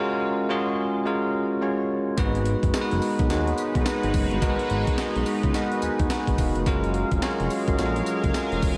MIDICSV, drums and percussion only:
0, 0, Header, 1, 2, 480
1, 0, Start_track
1, 0, Tempo, 560748
1, 1864, Time_signature, 4, 2, 24, 8
1, 7511, End_track
2, 0, Start_track
2, 0, Title_t, "Drums"
2, 1863, Note_on_c, 9, 36, 126
2, 1863, Note_on_c, 9, 42, 79
2, 1863, Note_on_c, 9, 54, 71
2, 1948, Note_off_c, 9, 54, 0
2, 1949, Note_off_c, 9, 36, 0
2, 1949, Note_off_c, 9, 42, 0
2, 2012, Note_on_c, 9, 42, 58
2, 2097, Note_off_c, 9, 42, 0
2, 2102, Note_on_c, 9, 42, 75
2, 2187, Note_off_c, 9, 42, 0
2, 2251, Note_on_c, 9, 36, 85
2, 2252, Note_on_c, 9, 42, 55
2, 2337, Note_off_c, 9, 36, 0
2, 2338, Note_off_c, 9, 42, 0
2, 2343, Note_on_c, 9, 38, 124
2, 2345, Note_on_c, 9, 42, 75
2, 2346, Note_on_c, 9, 54, 93
2, 2429, Note_off_c, 9, 38, 0
2, 2431, Note_off_c, 9, 42, 0
2, 2432, Note_off_c, 9, 54, 0
2, 2494, Note_on_c, 9, 42, 54
2, 2580, Note_off_c, 9, 42, 0
2, 2584, Note_on_c, 9, 46, 68
2, 2585, Note_on_c, 9, 54, 61
2, 2669, Note_off_c, 9, 46, 0
2, 2670, Note_off_c, 9, 54, 0
2, 2731, Note_on_c, 9, 42, 51
2, 2732, Note_on_c, 9, 36, 97
2, 2817, Note_off_c, 9, 42, 0
2, 2818, Note_off_c, 9, 36, 0
2, 2824, Note_on_c, 9, 54, 66
2, 2825, Note_on_c, 9, 42, 78
2, 2826, Note_on_c, 9, 38, 66
2, 2910, Note_off_c, 9, 42, 0
2, 2910, Note_off_c, 9, 54, 0
2, 2911, Note_off_c, 9, 38, 0
2, 2974, Note_on_c, 9, 42, 58
2, 3060, Note_off_c, 9, 42, 0
2, 3062, Note_on_c, 9, 42, 69
2, 3065, Note_on_c, 9, 54, 66
2, 3147, Note_off_c, 9, 42, 0
2, 3150, Note_off_c, 9, 54, 0
2, 3211, Note_on_c, 9, 36, 97
2, 3212, Note_on_c, 9, 42, 54
2, 3297, Note_off_c, 9, 36, 0
2, 3298, Note_off_c, 9, 42, 0
2, 3302, Note_on_c, 9, 38, 127
2, 3306, Note_on_c, 9, 42, 74
2, 3306, Note_on_c, 9, 54, 104
2, 3387, Note_off_c, 9, 38, 0
2, 3391, Note_off_c, 9, 42, 0
2, 3391, Note_off_c, 9, 54, 0
2, 3453, Note_on_c, 9, 42, 57
2, 3538, Note_off_c, 9, 42, 0
2, 3542, Note_on_c, 9, 46, 82
2, 3543, Note_on_c, 9, 36, 100
2, 3543, Note_on_c, 9, 54, 70
2, 3628, Note_off_c, 9, 46, 0
2, 3629, Note_off_c, 9, 36, 0
2, 3629, Note_off_c, 9, 54, 0
2, 3691, Note_on_c, 9, 42, 48
2, 3777, Note_off_c, 9, 42, 0
2, 3783, Note_on_c, 9, 36, 119
2, 3783, Note_on_c, 9, 54, 74
2, 3784, Note_on_c, 9, 42, 83
2, 3869, Note_off_c, 9, 36, 0
2, 3869, Note_off_c, 9, 42, 0
2, 3869, Note_off_c, 9, 54, 0
2, 3932, Note_on_c, 9, 42, 56
2, 4017, Note_off_c, 9, 42, 0
2, 4021, Note_on_c, 9, 42, 71
2, 4107, Note_off_c, 9, 42, 0
2, 4171, Note_on_c, 9, 36, 90
2, 4171, Note_on_c, 9, 42, 58
2, 4257, Note_off_c, 9, 36, 0
2, 4257, Note_off_c, 9, 42, 0
2, 4262, Note_on_c, 9, 38, 122
2, 4264, Note_on_c, 9, 42, 73
2, 4265, Note_on_c, 9, 54, 88
2, 4348, Note_off_c, 9, 38, 0
2, 4350, Note_off_c, 9, 42, 0
2, 4351, Note_off_c, 9, 54, 0
2, 4413, Note_on_c, 9, 42, 53
2, 4499, Note_off_c, 9, 42, 0
2, 4502, Note_on_c, 9, 46, 70
2, 4503, Note_on_c, 9, 54, 67
2, 4587, Note_off_c, 9, 46, 0
2, 4588, Note_off_c, 9, 54, 0
2, 4650, Note_on_c, 9, 42, 53
2, 4652, Note_on_c, 9, 36, 97
2, 4736, Note_off_c, 9, 42, 0
2, 4738, Note_off_c, 9, 36, 0
2, 4744, Note_on_c, 9, 42, 76
2, 4744, Note_on_c, 9, 54, 71
2, 4745, Note_on_c, 9, 38, 66
2, 4829, Note_off_c, 9, 54, 0
2, 4830, Note_off_c, 9, 42, 0
2, 4831, Note_off_c, 9, 38, 0
2, 4893, Note_on_c, 9, 42, 55
2, 4979, Note_off_c, 9, 42, 0
2, 4982, Note_on_c, 9, 42, 73
2, 4985, Note_on_c, 9, 54, 75
2, 5067, Note_off_c, 9, 42, 0
2, 5070, Note_off_c, 9, 54, 0
2, 5131, Note_on_c, 9, 36, 104
2, 5133, Note_on_c, 9, 42, 59
2, 5217, Note_off_c, 9, 36, 0
2, 5218, Note_off_c, 9, 42, 0
2, 5222, Note_on_c, 9, 38, 127
2, 5226, Note_on_c, 9, 42, 87
2, 5226, Note_on_c, 9, 54, 100
2, 5307, Note_off_c, 9, 38, 0
2, 5311, Note_off_c, 9, 42, 0
2, 5311, Note_off_c, 9, 54, 0
2, 5371, Note_on_c, 9, 36, 80
2, 5374, Note_on_c, 9, 42, 54
2, 5456, Note_off_c, 9, 36, 0
2, 5459, Note_off_c, 9, 42, 0
2, 5464, Note_on_c, 9, 36, 98
2, 5464, Note_on_c, 9, 46, 75
2, 5465, Note_on_c, 9, 54, 71
2, 5549, Note_off_c, 9, 36, 0
2, 5549, Note_off_c, 9, 46, 0
2, 5550, Note_off_c, 9, 54, 0
2, 5611, Note_on_c, 9, 42, 53
2, 5697, Note_off_c, 9, 42, 0
2, 5704, Note_on_c, 9, 36, 125
2, 5704, Note_on_c, 9, 42, 83
2, 5704, Note_on_c, 9, 54, 72
2, 5789, Note_off_c, 9, 36, 0
2, 5789, Note_off_c, 9, 54, 0
2, 5790, Note_off_c, 9, 42, 0
2, 5853, Note_on_c, 9, 42, 52
2, 5938, Note_off_c, 9, 42, 0
2, 5941, Note_on_c, 9, 42, 71
2, 6027, Note_off_c, 9, 42, 0
2, 6091, Note_on_c, 9, 36, 91
2, 6091, Note_on_c, 9, 42, 61
2, 6176, Note_off_c, 9, 36, 0
2, 6176, Note_off_c, 9, 42, 0
2, 6182, Note_on_c, 9, 38, 120
2, 6184, Note_on_c, 9, 42, 80
2, 6185, Note_on_c, 9, 54, 93
2, 6267, Note_off_c, 9, 38, 0
2, 6269, Note_off_c, 9, 42, 0
2, 6270, Note_off_c, 9, 54, 0
2, 6333, Note_on_c, 9, 42, 55
2, 6419, Note_off_c, 9, 42, 0
2, 6423, Note_on_c, 9, 46, 76
2, 6424, Note_on_c, 9, 54, 64
2, 6509, Note_off_c, 9, 46, 0
2, 6510, Note_off_c, 9, 54, 0
2, 6571, Note_on_c, 9, 42, 52
2, 6572, Note_on_c, 9, 36, 92
2, 6656, Note_off_c, 9, 42, 0
2, 6658, Note_off_c, 9, 36, 0
2, 6664, Note_on_c, 9, 54, 72
2, 6665, Note_on_c, 9, 42, 75
2, 6666, Note_on_c, 9, 38, 59
2, 6750, Note_off_c, 9, 42, 0
2, 6750, Note_off_c, 9, 54, 0
2, 6751, Note_off_c, 9, 38, 0
2, 6815, Note_on_c, 9, 42, 59
2, 6900, Note_off_c, 9, 42, 0
2, 6902, Note_on_c, 9, 42, 75
2, 6905, Note_on_c, 9, 54, 71
2, 6988, Note_off_c, 9, 42, 0
2, 6991, Note_off_c, 9, 54, 0
2, 7051, Note_on_c, 9, 36, 95
2, 7054, Note_on_c, 9, 42, 61
2, 7137, Note_off_c, 9, 36, 0
2, 7139, Note_off_c, 9, 42, 0
2, 7142, Note_on_c, 9, 38, 127
2, 7146, Note_on_c, 9, 42, 76
2, 7146, Note_on_c, 9, 54, 93
2, 7228, Note_off_c, 9, 38, 0
2, 7231, Note_off_c, 9, 54, 0
2, 7232, Note_off_c, 9, 42, 0
2, 7293, Note_on_c, 9, 42, 57
2, 7379, Note_off_c, 9, 42, 0
2, 7383, Note_on_c, 9, 36, 103
2, 7383, Note_on_c, 9, 46, 82
2, 7384, Note_on_c, 9, 54, 70
2, 7468, Note_off_c, 9, 46, 0
2, 7469, Note_off_c, 9, 36, 0
2, 7470, Note_off_c, 9, 54, 0
2, 7511, End_track
0, 0, End_of_file